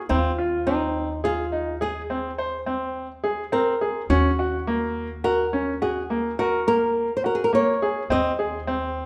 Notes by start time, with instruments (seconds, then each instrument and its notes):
0.09 upright bass D#2, grand piano C4, nylon-string guitar F4
0.38 grand piano F4
0.67 grand piano C4, nylon-string guitar D#4
1.24 nylon-string guitar F4, grand piano G#4
1.52 grand piano D#4
1.81 grand piano G#4, nylon-string guitar G#4
2.10 grand piano C4
2.38 grand piano C5
2.66 grand piano C4
3.24 grand piano G#4
3.52 grand piano C4, nylon-string guitar A#4
3.81 grand piano G#4
4.09 upright bass D#2, grand piano C#4, nylon-string guitar F#4
4.39 grand piano F#4
4.67 grand piano A#3
5.24 grand piano F#4, nylon-string guitar A#4
5.53 grand piano C#4
5.82 grand piano F#4, nylon-string guitar G#4
6.10 grand piano A#3
6.39 nylon-string guitar F#4, grand piano A#4
6.67 grand piano A#3, nylon-string guitar A#4
7.17 nylon-string guitar C5
7.24 grand piano F#4, nylon-string guitar A#4
7.35 nylon-string guitar G#4
7.44 nylon-string guitar A#4
7.53 grand piano A#3, nylon-string guitar C#5
7.82 grand piano G#4
8.10 upright bass D#2, grand piano C4, nylon-string guitar D#5
8.39 grand piano G#4
8.67 grand piano C4